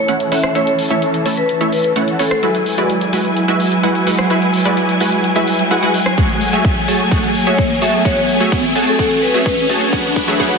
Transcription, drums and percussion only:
0.08 closed hi-hat medium
0.20 closed hi-hat soft
0.32 open hi-hat loud
0.44 cross-stick medium
0.44 closed hi-hat soft
0.55 closed hi-hat medium
0.67 closed hi-hat soft
0.79 open hi-hat loud
0.90 closed hi-hat soft
1.02 closed hi-hat medium
1.14 closed hi-hat soft
1.26 open hi-hat loud
1.37 closed hi-hat soft
1.49 closed hi-hat medium
1.61 closed hi-hat soft
1.72 open hi-hat loud
1.84 closed hi-hat soft
1.96 closed hi-hat medium
2.08 closed hi-hat soft
2.19 open hi-hat loud
2.31 cross-stick medium
2.31 closed hi-hat soft
2.43 closed hi-hat medium
2.55 closed hi-hat soft
2.66 open hi-hat loud
2.78 closed hi-hat soft
2.90 closed hi-hat medium
3.01 closed hi-hat soft
3.13 open hi-hat loud
3.25 closed hi-hat soft
3.37 closed hi-hat medium
3.48 closed hi-hat soft
3.60 open hi-hat loud
3.72 closed hi-hat soft
3.83 closed hi-hat medium
3.95 closed hi-hat soft
4.07 open hi-hat loud
4.19 cross-stick medium
4.19 closed hi-hat soft
4.30 closed hi-hat medium
4.42 closed hi-hat soft
4.54 open hi-hat loud
4.65 closed hi-hat soft
4.77 closed hi-hat medium
4.89 closed hi-hat soft
5.00 open hi-hat loud
5.12 closed hi-hat soft
5.24 closed hi-hat medium
5.36 closed hi-hat soft
5.47 open hi-hat loud
5.59 closed hi-hat soft
5.71 closed hi-hat medium
5.83 closed hi-hat soft
5.94 open hi-hat loud
6.06 cross-stick medium
6.18 kick loud
6.18 closed hi-hat medium
6.29 closed hi-hat soft
6.41 open hi-hat loud
6.53 closed hi-hat soft
6.65 kick loud
6.65 closed hi-hat medium
6.76 closed hi-hat soft
6.88 open hi-hat loud
7.00 closed hi-hat soft
7.12 kick loud
7.12 closed hi-hat medium
7.23 closed hi-hat soft
7.35 open hi-hat loud
7.47 closed hi-hat soft
7.58 kick loud
7.58 closed hi-hat medium
7.70 closed hi-hat soft
7.82 open hi-hat loud
7.93 closed hi-hat soft
8.05 kick loud
8.05 closed hi-hat medium
8.17 closed hi-hat soft
8.29 open hi-hat loud
8.40 closed hi-hat soft
8.52 kick loud
8.52 closed hi-hat medium
8.64 closed hi-hat soft
8.76 open hi-hat loud
8.87 closed hi-hat soft
8.99 kick loud
8.99 closed hi-hat medium
9.11 closed hi-hat soft
9.23 open hi-hat loud
9.34 closed hi-hat soft
9.46 kick loud
9.46 closed hi-hat medium
9.58 closed hi-hat soft
9.69 open hi-hat loud
9.81 closed hi-hat soft
9.93 kick loud
9.93 closed hi-hat medium
10.05 closed hi-hat soft
10.16 kick loud
10.16 open hi-hat loud
10.28 closed hi-hat soft
10.40 kick loud
10.40 closed hi-hat medium
10.51 closed hi-hat soft

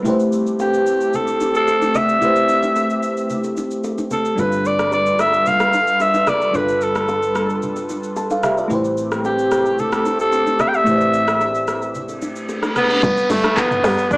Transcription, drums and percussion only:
0.05 low conga medium
0.05 shaker medium
0.20 shaker medium
0.33 shaker medium
0.47 shaker medium
0.60 high bongo medium
0.60 shaker medium
0.74 shaker soft
0.87 shaker loud
1.01 shaker soft
1.14 low conga medium
1.14 shaker medium
1.28 high bongo soft
1.28 shaker medium
1.41 low bongo medium
1.41 shaker medium
1.55 shaker medium
1.68 high bongo medium
1.68 shaker medium
1.82 low bongo medium
1.82 shaker soft
1.95 high bongo medium
1.95 low conga medium
1.95 shaker medium
2.09 shaker soft
2.21 low conga medium
2.21 shaker medium
2.36 shaker medium
2.49 low bongo soft
2.49 shaker medium
2.63 low bongo medium
2.63 shaker medium
2.76 high bongo medium
2.76 shaker medium
2.90 shaker soft
3.03 shaker medium
3.17 shaker soft
3.30 low conga medium
3.30 shaker medium
3.44 high bongo soft
3.44 shaker medium
3.57 low bongo medium
3.57 shaker medium
3.71 shaker medium
3.84 high bongo medium
3.84 shaker medium
3.98 low bongo medium
3.98 shaker medium
4.11 high bongo soft
4.11 low conga medium
4.11 shaker medium
4.25 shaker soft
4.38 low conga medium
4.38 shaker medium
4.52 shaker soft
4.65 shaker medium
4.79 cross-stick medium
4.79 shaker medium
4.92 high bongo medium
4.92 shaker medium
5.06 shaker soft
5.19 cross-stick medium
5.19 shaker medium
5.33 shaker soft
5.46 low conga medium
5.46 shaker medium
5.60 cross-stick medium
5.60 high bongo soft
5.60 shaker medium
5.73 low bongo medium
5.73 shaker medium
5.87 shaker medium
6.00 high bongo medium
6.00 shaker medium
6.14 low bongo medium
6.14 shaker medium
6.27 cross-stick medium
6.27 high bongo soft
6.27 low conga medium
6.27 shaker medium
6.41 shaker soft
6.54 low conga medium
6.54 shaker medium
6.68 shaker medium
6.81 shaker medium
6.96 cross-stick medium
6.96 shaker medium
7.08 high bongo medium
7.08 shaker medium
7.23 shaker soft
7.35 cross-stick medium
7.35 shaker medium
7.50 shaker soft
7.62 low conga medium
7.62 shaker medium
7.76 high bongo soft
7.76 shaker medium
7.89 low bongo medium
7.89 shaker medium
8.03 shaker medium
8.16 high bongo medium
8.16 shaker medium
8.30 low bongo medium
8.30 shaker medium
8.43 cross-stick loud
8.43 high bongo soft
8.43 low conga medium
8.43 shaker medium
8.58 shaker medium
8.70 low conga medium
8.70 shaker medium
8.85 shaker medium
8.98 shaker medium
9.12 cross-stick medium
9.12 shaker medium
9.24 high bongo medium
9.24 shaker medium
9.39 shaker soft
9.52 cross-stick medium
9.52 shaker medium
9.66 shaker soft
9.79 low conga medium
9.79 shaker medium
9.93 cross-stick loud
9.93 high bongo soft
9.93 shaker medium
10.06 low bongo medium
10.06 shaker medium
10.20 shaker medium
10.33 high bongo medium
10.33 shaker medium
10.47 low bongo medium
10.47 shaker medium
10.59 cross-stick medium
10.59 high bongo soft
10.59 low conga medium
10.59 shaker medium
10.74 shaker soft
10.86 low conga medium
10.86 shaker medium
11.01 shaker medium
11.14 shaker medium
11.28 cross-stick loud
11.28 shaker medium
11.41 high bongo medium
11.41 shaker medium
11.55 shaker medium
11.68 cross-stick medium
11.68 shaker medium
11.82 shaker soft
11.95 low conga medium
11.95 shaker medium
12.09 high bongo soft
12.09 shaker medium
12.22 low bongo medium
12.22 shaker medium
12.36 shaker medium
12.49 high bongo medium
12.49 shaker medium
12.63 cross-stick medium
12.63 low bongo medium
12.63 shaker medium
12.76 cross-stick loud
12.76 high bongo soft
12.76 low conga medium
12.76 shaker medium
12.90 shaker soft
13.02 kick loud
13.02 low conga medium
13.02 shaker medium
13.17 shaker medium
13.30 open hi-hat soft
13.30 low bongo soft
13.30 shaker medium
13.44 cross-stick loud
13.44 low bongo medium
13.44 shaker medium
13.57 kick medium
13.57 clap medium
13.57 high bongo medium
13.57 shaker medium
13.71 mid tom loud
13.71 shaker medium
13.84 cross-stick loud
13.84 open hi-hat medium
13.84 shaker loud
13.98 shaker medium
14.11 kick loud
14.11 low conga medium
14.11 shaker medium

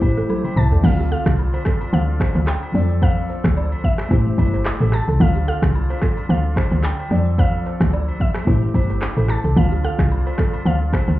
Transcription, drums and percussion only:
0.02 kick medium
0.02 high agogo medium
0.02 shaker medium
0.17 shaker medium
0.29 high tom medium
0.29 low woodblock medium
0.29 shaker medium
0.44 mid tom medium
0.44 high agogo medium
0.56 mid tom medium
0.56 shaker soft
0.70 floor tom medium
0.70 shaker medium
0.84 kick loud
0.84 crash loud
0.84 high agogo medium
0.84 shaker medium
1.11 shaker medium
1.26 finger snap medium
1.26 kick medium
1.26 cross-stick loud
1.26 shaker medium
1.38 low woodblock medium
1.38 shaker medium
1.54 high agogo medium
1.65 finger snap medium
1.65 kick medium
1.65 cross-stick loud
1.65 shaker medium
1.81 high agogo medium
1.81 shaker medium
1.93 shaker medium
2.20 finger snap medium
2.20 kick medium
2.20 cross-stick loud
2.20 high agogo medium
2.20 shaker medium
2.35 shaker medium
2.47 finger snap medium
2.47 cross-stick loud
2.47 clap medium
2.47 low woodblock medium
2.47 shaker medium
2.63 high agogo medium
2.74 shaker soft
2.89 shaker medium
3.02 kick loud
3.02 high agogo medium
3.02 shaker medium
3.29 shaker medium
3.44 finger snap medium
3.44 kick medium
3.44 cross-stick loud
3.44 shaker medium
3.56 low woodblock medium
3.56 shaker medium
3.72 high agogo medium
3.84 kick loud
3.84 shaker medium
3.98 finger snap medium
3.98 cross-stick medium
3.98 high agogo medium
3.98 shaker medium
4.11 kick loud
4.11 shaker medium
4.38 kick loud
4.38 high agogo medium
4.38 shaker medium
4.53 shaker medium
4.65 finger snap medium
4.65 cross-stick loud
4.65 clap loud
4.65 low woodblock medium
4.65 shaker medium
4.81 high agogo medium
4.92 finger snap medium
4.92 cross-stick medium
4.92 shaker medium
5.07 shaker medium
5.20 kick loud
5.20 high agogo medium
5.20 shaker medium
5.47 shaker medium
5.62 finger snap medium
5.62 kick medium
5.62 cross-stick loud
5.62 shaker medium
5.74 low woodblock medium
5.74 shaker medium
5.90 high agogo medium
6.02 finger snap medium
6.02 kick medium
6.02 cross-stick medium
6.02 shaker medium
6.17 high agogo medium
6.17 shaker medium
6.29 shaker medium
6.56 finger snap medium
6.56 kick medium
6.56 cross-stick loud
6.56 high agogo medium
6.56 shaker medium
6.71 shaker medium
6.83 finger snap medium
6.83 cross-stick medium
6.83 clap loud
6.83 low woodblock medium
6.83 shaker medium
6.99 high agogo medium
7.11 shaker soft
7.25 shaker medium
7.38 kick loud
7.38 high agogo medium
7.38 shaker medium
7.65 shaker medium
7.80 finger snap medium
7.80 kick loud
7.80 cross-stick loud
7.80 shaker medium
7.92 low woodblock medium
7.92 shaker medium
8.08 high agogo medium
8.20 kick medium
8.20 shaker medium
8.34 finger snap medium
8.34 cross-stick loud
8.34 high agogo medium
8.34 shaker medium
8.47 kick loud
8.47 shaker medium
8.74 kick medium
8.74 high agogo medium
8.74 shaker medium
8.89 shaker medium
9.02 finger snap medium
9.02 cross-stick medium
9.02 clap loud
9.02 low woodblock medium
9.02 shaker medium
9.17 high agogo medium
9.28 finger snap medium
9.28 cross-stick medium
9.28 shaker soft
9.43 shaker medium
9.56 kick loud
9.56 high agogo medium
9.56 shaker medium
9.84 shaker medium
9.99 finger snap medium
9.99 kick loud
9.99 cross-stick loud
9.99 shaker medium
10.10 low woodblock medium
10.10 shaker medium
10.27 high agogo medium
10.38 finger snap medium
10.38 kick medium
10.38 cross-stick loud
10.38 shaker medium
10.53 high agogo medium
10.53 shaker medium
10.66 shaker medium
10.93 finger snap medium
10.93 kick medium
10.93 cross-stick loud
10.93 high agogo medium
10.93 shaker medium
11.08 shaker medium

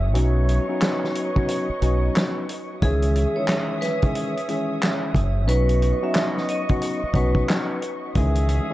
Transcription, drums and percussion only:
0.15 closed hi-hat medium
0.49 closed hi-hat medium
0.81 snare loud
0.81 clap medium
0.81 closed hi-hat medium
1.04 snare soft
1.15 closed hi-hat medium
1.36 kick loud
1.48 closed hi-hat loud
1.82 closed hi-hat medium
2.15 snare loud
2.15 clap medium
2.15 closed hi-hat medium
2.49 closed hi-hat medium
2.82 kick loud
2.82 closed hi-hat medium
3.02 closed hi-hat medium
3.15 closed hi-hat medium
3.47 snare loud
3.47 clap medium
3.47 closed hi-hat medium
3.82 snare soft
3.82 closed hi-hat medium
4.02 kick loud
4.02 closed hi-hat soft
4.15 closed hi-hat loud
4.37 closed hi-hat medium
4.49 closed hi-hat medium
4.82 snare loud
4.82 clap medium
4.82 closed hi-hat medium
5.15 kick loud
5.15 closed hi-hat medium
5.48 closed hi-hat medium
5.69 closed hi-hat medium
5.82 closed hi-hat medium
6.14 snare loud
6.14 clap medium
6.14 closed hi-hat medium
6.37 snare soft
6.48 closed hi-hat medium
6.69 kick loud
6.69 closed hi-hat soft
6.82 closed hi-hat loud
7.14 kick loud
7.14 closed hi-hat medium
7.35 kick loud
7.48 snare loud
7.48 clap medium
7.48 closed hi-hat medium
7.82 closed hi-hat medium
8.15 kick loud
8.15 closed hi-hat medium
8.35 closed hi-hat medium
8.49 closed hi-hat medium

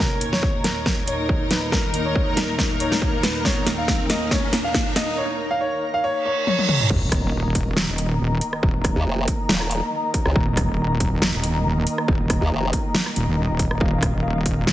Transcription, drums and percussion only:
0.21 closed hi-hat medium
0.33 snare soft
0.43 kick loud
0.64 snare soft
0.64 closed hi-hat medium
0.86 kick medium
0.86 snare soft
1.07 closed hi-hat medium
1.29 kick medium
1.51 snare medium
1.51 closed hi-hat medium
1.72 kick loud
1.72 snare medium
1.94 closed hi-hat medium
2.15 kick loud
2.37 snare medium
2.37 closed hi-hat medium
2.59 kick medium
2.59 snare medium
2.80 closed hi-hat medium
2.92 snare medium
3.02 kick medium
3.23 snare medium
3.23 closed hi-hat medium
3.45 kick loud
3.45 snare medium
3.67 snare medium
3.67 closed hi-hat medium
3.88 kick loud
3.88 snare medium
4.10 snare medium
4.10 closed hi-hat medium
4.31 kick medium
4.31 snare medium
4.53 snare medium
4.53 closed hi-hat medium
4.74 kick medium
4.74 snare medium
4.96 snare medium
4.96 closed hi-hat medium
6.47 high tom medium
6.59 high tom medium
6.69 mid tom medium
6.80 mid tom medium
6.90 kick loud
6.90 crash loud
7.12 kick loud
7.12 cross-stick medium
7.12 closed hi-hat medium
7.55 kick medium
7.55 closed hi-hat medium
7.77 snare loud
7.98 closed hi-hat medium
8.41 closed hi-hat medium
8.53 cross-stick soft
8.63 kick loud
8.84 kick loud
8.84 cross-stick medium
8.84 closed hi-hat medium
9.28 kick medium
9.28 closed hi-hat medium
9.49 snare loud
9.61 cross-stick medium
9.71 closed hi-hat medium
10.14 kick medium
10.14 closed hi-hat medium
10.26 cross-stick soft
10.36 kick loud
10.57 kick loud
10.57 cross-stick medium
10.57 closed hi-hat medium
11.00 kick medium
11.00 closed hi-hat medium
11.22 snare loud
11.43 closed hi-hat medium
11.87 closed hi-hat medium
11.98 cross-stick medium
12.08 kick loud
12.30 kick loud
12.30 cross-stick medium
12.30 closed hi-hat medium
12.73 kick medium
12.73 closed hi-hat medium
12.95 snare loud
13.06 cross-stick medium
13.16 closed hi-hat medium
13.59 kick medium
13.59 closed hi-hat medium
13.71 cross-stick soft
13.81 kick loud
14.02 kick loud
14.02 cross-stick medium
14.02 closed hi-hat medium
14.46 kick medium
14.46 closed hi-hat medium
14.67 snare loud

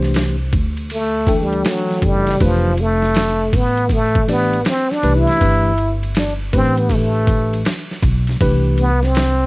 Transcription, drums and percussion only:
0.02 snare soft
0.14 snare loud
0.14 hi-hat pedal soft
0.14 ride medium
0.53 kick loud
0.53 ride medium
0.77 ride soft
0.90 ride medium
1.27 kick medium
1.27 ride medium
1.53 ride soft
1.65 snare loud
1.65 hi-hat pedal medium
1.65 ride medium
1.91 snare soft
2.02 kick medium
2.02 ride medium
2.27 snare soft
2.27 ride soft
2.40 kick loud
2.40 ride medium
2.77 ride soft
3.02 snare soft
3.15 snare loud
3.15 hi-hat pedal soft
3.15 ride medium
3.53 kick loud
3.53 ride medium
3.77 ride soft
3.89 kick medium
3.89 ride medium
4.15 kick medium
4.28 ride medium
4.53 ride soft
4.65 snare loud
4.65 hi-hat pedal medium
4.65 ride medium
4.91 snare soft
5.03 ride medium
5.27 snare soft
5.27 ride soft
5.41 kick medium
5.41 ride medium
5.78 ride medium
6.03 ride soft
6.15 snare loud
6.15 hi-hat pedal medium
6.15 ride medium
6.53 kick loud
6.53 ride medium
6.78 ride soft
6.89 kick medium
6.89 ride medium
7.27 kick medium
7.27 ride medium
7.53 ride soft
7.65 snare loud
7.65 hi-hat pedal medium
7.65 ride medium
7.91 snare soft
8.02 kick medium
8.02 ride medium
8.27 snare soft
8.27 ride soft
8.41 kick loud
8.41 ride medium
8.78 ride medium
9.03 snare soft
9.15 snare loud
9.15 hi-hat pedal soft
9.15 ride medium

